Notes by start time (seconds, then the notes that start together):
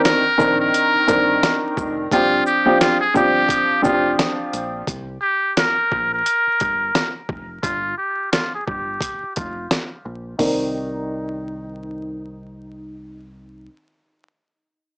Already playing: D#3 C4 D4 A#4
0.04 A#4, finger snap, snare, closed hi-hat
0.38 A#1 D#3 C4 D4 A#4, kick, shaker
0.60 A#4
0.74 closed hi-hat
0.95 muted fingered electric bass stroke
1.08 G1 D#3 C4 D4 A#4, kick, closed hi-hat, shaker
1.43 finger snap, snare, closed hi-hat
1.77 F1, kick, shaker
2.11 G1 F3 C4 D4 F4 G4, kick, closed hi-hat
2.46 G4, shaker
2.66 F3 C4 D4 G4
2.81 F4, finger snap, snare, closed hi-hat
3.01 G#4
3.14 G1 F3 C4 D4 G4, kick, shaker
3.49 kick, closed hi-hat
3.71 muted fingered electric bass stroke
3.82 F1 F3 C4 D4 F4 G4, kick, shaker
4.19 finger snap, snare, closed hi-hat
4.53 A#1, closed hi-hat, shaker
4.87 C2, kick, closed hi-hat
5.21 G4
5.57 A#4, snare, closed hi-hat
5.92 A#1, kick
6.14 A#4
6.26 closed hi-hat
6.47 muted fingered electric bass stroke
6.60 G1, kick, closed hi-hat
6.95 snare, closed hi-hat
7.29 F1, kick
7.63 G1 F4, kick, closed hi-hat
7.98 G4
8.32 F4, snare, closed hi-hat
8.55 G#4
8.67 G1 G4, kick
9.01 kick, closed hi-hat
9.23 muted fingered electric bass stroke
9.36 F1 F4, kick, closed hi-hat
9.71 snare, closed hi-hat
10.05 A#1
10.38 C2 D#3 C4 D#4 A#4 D5, kick, open hi-hat